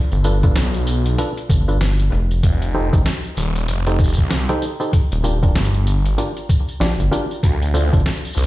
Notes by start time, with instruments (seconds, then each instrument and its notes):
Already playing: downlifter
0.12 analog synth bass G1, tambourine
0.24 clav D4 F4 A4 B4, tambourine
0.43 clav D4 F4 A4 B4, kick, closed hi-hat, tambourine
0.56 detuned saw bass B1, snare, closed hi-hat, tambourine
0.74 closed hi-hat, tambourine
0.76 tambourine
0.78 tambourine
0.80 tambourine
0.82 tambourine
0.85 tambourine
0.87 tambourine
1.06 closed hi-hat, tambourine
1.18 clav D4 F4 A4 B4, closed hi-hat, tambourine
1.37 closed hi-hat, tambourine
1.49 analog synth bass G1, kick, tambourine
1.68 clav D4 F4 A4 B4, tambourine
1.81 snare, closed hi-hat, tambourine
2.00 closed hi-hat, tambourine
2.12 analog synth bass F1, cross-stick
2.31 tambourine
2.43 detuned saw bass F1, kick, closed hi-hat, tambourine
2.62 closed hi-hat, tambourine
2.74 clav D#4 G4 A4 C5
2.93 analog synth bass A1, clav D#4 G4 A4 C5, kick, closed hi-hat, tambourine
3.06 snare, closed hi-hat, tambourine
3.24 tambourine
3.37 detuned saw bass D#1, tambourine
3.56 closed hi-hat, tambourine
3.68 detuned saw bass F1, closed hi-hat, tambourine
3.87 clav D#4 G4 A4 C5, cross-stick, closed hi-hat, tambourine
3.99 kick, tambourine
4.04 tambourine
4.09 tambourine
4.13 tambourine
4.18 detuned saw bass C2, kick, tambourine
4.31 snare, closed hi-hat, tambourine
4.49 clav D#4 G4 A4 C5, cross-stick, closed hi-hat, tambourine
4.62 tambourine
4.80 clav D#4 G4 A4 C5, tambourine
4.93 kick, closed hi-hat, tambourine
5.12 analog synth bass D#1, closed hi-hat, tambourine
5.24 clav D4 F4 G4 A#4, tambourine
5.43 clav D4 F4 G4 A#4, kick, closed hi-hat, tambourine
5.56 detuned saw bass G1, snare, closed hi-hat
5.65 tambourine
5.74 closed hi-hat, tambourine
5.87 tambourine
6.06 closed hi-hat, tambourine
6.18 clav D4 F4 G4 A#4, closed hi-hat, tambourine
6.37 closed hi-hat, tambourine
6.49 kick, tambourine
6.68 tambourine
6.80 analog synth bass A#1, clav D4 F4 G4 D5, snare, closed hi-hat, tambourine
6.99 analog synth bass G1, closed hi-hat, tambourine
7.11 clav D4 F4 G4 A#4, cross-stick, tambourine
7.31 tambourine
7.43 detuned saw bass D2, kick, closed hi-hat, tambourine
7.62 closed hi-hat, tambourine
7.74 clav D4 F4 A4 C5, tambourine
7.93 analog synth bass G1, clav D4 F4 A4 C5, kick, closed hi-hat, tambourine
8.00 closed hi-hat
8.06 snare, closed hi-hat, tambourine
8.12 closed hi-hat, tambourine
8.17 tambourine
8.25 closed hi-hat, tambourine
8.27 tambourine
8.33 detuned saw bass C2, tambourine
8.37 tambourine